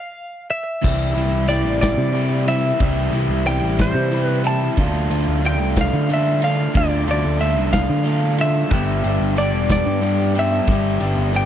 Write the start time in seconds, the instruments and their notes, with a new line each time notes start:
Already playing: clean electric guitar D#5 F5
0.51 clean electric guitar E5
0.82 picked electric bass C2, overdriven electric guitar C3 E3 G3 C4 E4, kick, crash
1.15 picked electric bass C2, overdriven electric guitar C3 E3 G3 C4 E4, ride
1.31 picked electric bass C2
1.47 overdriven electric guitar E3 G3 C4 E4, clean electric guitar D5, ride
1.64 picked electric bass A1
1.81 clean electric guitar D5, kick, snare, ride
1.97 picked electric bass C3
2.12 overdriven electric guitar E3 G3 C4 E4, ride
2.47 overdriven electric guitar G3 C4 E4, clean electric guitar E5, ride
2.78 picked electric bass C2, overdriven electric guitar C3 E3 G3 C4 E4, kick, ride
3.12 picked electric bass C2, overdriven electric guitar C3 E3 G3 C4 E4, ride
3.29 picked electric bass C2
3.45 overdriven electric guitar E3 G3 C4 E4, clean electric guitar G5, ride
3.61 picked electric bass A1
3.79 clean electric guitar C5, kick, snare, ride
3.95 picked electric bass C3
4.11 overdriven electric guitar E3 G3 C4 E4, ride
4.25 clean electric guitar B4
4.44 overdriven electric guitar G3 C4 E4, clean electric guitar A5, ride
4.77 picked electric bass D2, overdriven electric guitar D3 A3 D4 F4, kick, ride
5.10 picked electric bass D2, overdriven electric guitar D3 A3 D4 F4, ride
5.28 picked electric bass D2
5.42 overdriven electric guitar D3 A3 D4 F4, ride
5.46 clean electric guitar G5
5.60 picked electric bass C2
5.77 kick, snare, ride
5.81 clean electric guitar F5
5.93 picked electric bass D3
6.09 overdriven electric guitar D3 A3 D4 F4, ride
6.14 clean electric guitar E5
6.40 overdriven electric guitar A3 D4 F4, clean electric guitar F5, ride
6.74 picked electric bass D2, overdriven electric guitar D3 A3 D4 F4, clean electric guitar D5, kick, ride
7.07 picked electric bass D2, overdriven electric guitar D3 A3 D4 F4, ride
7.11 clean electric guitar D5
7.25 picked electric bass D2
7.39 overdriven electric guitar D3 A3 D4 F4, clean electric guitar E5, ride
7.58 picked electric bass C2
7.73 clean electric guitar F5, kick, snare, ride
7.90 picked electric bass D3
8.04 overdriven electric guitar D3 A3 D4 F4, ride
8.38 overdriven electric guitar A3 D4 F4, clean electric guitar E5, ride
8.70 picked electric bass G1, overdriven electric guitar G2 D3 G3 B3 D4 G4, kick, crash
9.04 picked electric bass G1, overdriven electric guitar G2 D3 G3 B3 D4 G4, ride
9.20 picked electric bass G1
9.36 overdriven electric guitar G3 B3 D4 G4, clean electric guitar D5, ride
9.53 picked electric bass E1
9.69 clean electric guitar D5, kick, snare, ride
9.86 picked electric bass G2
10.01 overdriven electric guitar G3 B3 D4 G4, ride
10.35 overdriven electric guitar G3 B3 D4 G4, ride
10.39 clean electric guitar E5
10.67 picked electric bass G1, overdriven electric guitar G2 D3 G3 B3 D4 G4, kick, ride
11.00 picked electric bass G1, overdriven electric guitar G2 D3 G3 B3 D4 G4, ride
11.17 picked electric bass G1
11.33 overdriven electric guitar G3 B3 D4 G4, clean electric guitar G5, ride